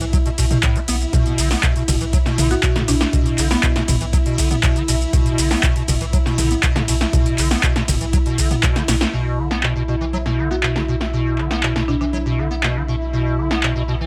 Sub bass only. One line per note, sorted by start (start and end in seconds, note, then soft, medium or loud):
0.01 0.18 B1 medium
0.38 0.55 B1 loud
0.88 1.05 B1 medium
1.38 1.55 B1 loud
1.88 1.97 F#1 loud
2.01 2.18 B1 medium
2.38 2.55 B1 medium
2.88 3.05 B1 medium
3.38 3.55 B1 loud
3.88 3.97 F#1 loud
4.01 4.18 B1 medium
4.38 4.55 B1 loud
4.88 5.05 B1 medium
5.38 5.55 B1 loud
5.88 5.97 F#1 loud
6.01 6.18 B1 medium
6.38 6.55 B1 medium
6.88 7.05 B1 medium
7.38 7.55 B1 loud
7.88 7.97 F#1 loud
8.01 8.18 B1 medium
8.38 8.55 B1 loud
8.88 9.05 B1 loud
9.13 14.06 B1 medium